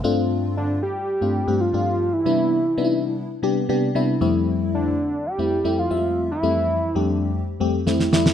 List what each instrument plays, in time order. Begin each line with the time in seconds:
0.04 fm electric piano G2 A3 C4 D4 F4
0.57 analog synth lead D4
0.83 analog synth lead G4
1.21 fm electric piano G2 A3 C4 D4 F4
1.47 fm electric piano G2 A3 C4 D4 G4
1.61 analog synth lead F4
1.73 fm electric piano G2 A3 C4 D4 G4
2.13 analog synth lead E4
2.25 fm electric piano C3 G3 B3 D4 E4
2.77 fm electric piano C3 G3 B3 D4 D#4
2.84 fm electric piano E4
3.43 fm electric piano C3 G3 B3 D4 G4
3.69 fm electric piano C3 G3 B3 D4 G4
3.95 fm electric piano C3 G3 B3 D4 E4
4.21 fm electric piano F2 G3 A3 C4 E4
4.74 analog synth lead D4
5.26 analog synth lead G4
5.38 fm electric piano F2 G3 A3 C4 E4
5.64 fm electric piano F2 G3 A3 C4 E4
5.79 analog synth lead F4
5.90 fm electric piano F2 G3 G#3 C4 E5
5.97 fm electric piano A3
6.31 analog synth lead E4
6.43 fm electric piano F2 G3 A3 C4 E4
6.95 fm electric piano F2 G3 A3 C4 G4
7.01 analog synth lead D4
7.60 fm electric piano F2 G3 A3 C4 G4
7.86 fm electric piano F2 G3 A3 C4 E4, snare
8.00 snare
8.12 fm electric piano F2 G3 A3 C4 E4, snare
8.26 snare